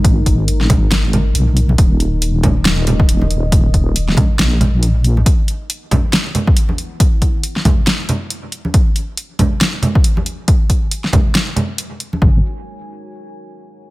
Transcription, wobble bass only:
X:1
M:4/4
L:1/8
Q:"Swing 16ths" 1/4=138
K:G#m
V:1 name="Wobble bass" clef=bass
G,,, G,,,2 G,,,3 B,,,2 | D,,,6 D,,,2- | D,,, D,,,2 z A,,,4 | z8 |
z8 | z8 | z8 | G,,, z6 z |]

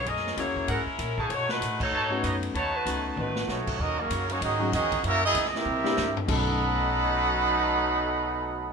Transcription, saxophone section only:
X:1
M:4/4
L:1/8
Q:"Swing" 1/4=193
K:Bmix
V:1 name="Saxophone section"
[CG^Ad]2 [^A,EGc]2 [G,CEA]3 [E,A,CG] | [A,DFc] [A,DFB]2 [DFAc]4 z | [A,DFc] [A,DFB]2 z [A,DFB]3 z | z8 |
z8 | z8 | z8 |]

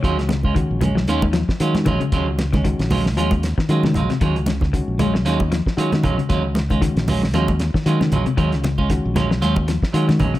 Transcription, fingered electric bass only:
X:1
M:4/4
L:1/16
Q:"Swing 16ths" 1/4=115
K:Ebm
V:1 name="Fingered electric bass" clef=bass
E,, D,,4 B,,,3 E,,3 z E,2 B,,, z | E,, D,,4 B,,,3 E,,3 z E,2 B,,, z | E,, D,,4 B,,,3 E,,3 z E,2 B,,, z | E,, D,,4 B,,,3 E,,3 z E,2 B,,, z |
E,, D,,4 B,,,3 E,,3 z E,2 B,,, z |]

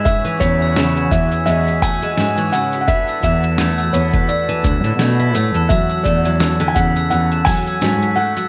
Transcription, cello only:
X:1
M:4/4
L:1/16
Q:"Swing 16ths" 1/4=85
K:Emix
V:1 name="Cello" clef=bass
z2 E,,3 z E,, z E,, z3 G,, z3 | z2 E,,3 z E,, z3 D,, A,, B,,2 A,, E,, | z2 E,,3 z E,, z E,, z3 G,, z3 |]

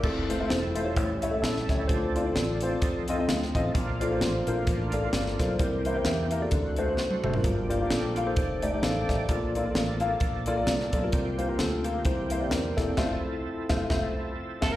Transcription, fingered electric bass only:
X:1
M:4/4
L:1/8
Q:"Swing" 1/4=130
K:F
V:1 name="Fingered electric bass" clef=bass
F,,,2 E,,,2 A,,,2 B,,, ^C,, | D,,2 A,,,2 F,,2 D,, A,,, | B,,,2 A,,, B,,, A,,,2 G,,, =B,,, | C,,2 E,,2 D,,2 C,, ^F,,, |
G,,,2 B,,,2 F,,,2 A,,, A,,, | B,,,2 A,,,2 B,,,2 C,, =B,,, | C,,2 D,,2 C,,2 E,, E,,, | F,,, z2 F,,, F,,, z2 F,,, |]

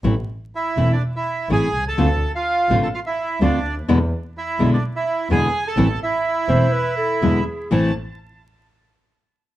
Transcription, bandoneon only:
X:1
M:4/4
L:1/16
Q:1/4=125
K:Am
V:1 name="Bandoneon"
z4 [Ee]3 [Dd]2 [Ee]3 [^G^g]3 [Aa]- | [Aa]3 [Ff]4 [Aa] [Ff] [Ee]3 [Dd]3 z | z4 [Ee]3 [Dd]2 [Ee]3 [^G^g]3 [Aa]- | [Aa]2 [Ee]12 z2 |
a2 z12 z2 |]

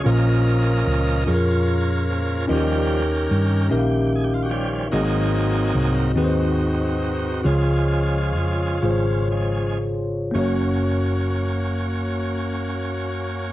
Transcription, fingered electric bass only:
X:1
M:6/8
L:1/8
Q:3/8=48
K:F#
V:1 name="Fingered electric bass" clef=bass
A,,,2 C,, E,,3 | D,,2 =G,, A,,,3 | G,,,2 ^B,,, D,,3 | C,,2 E,, G,,,3 |
F,,,6 |]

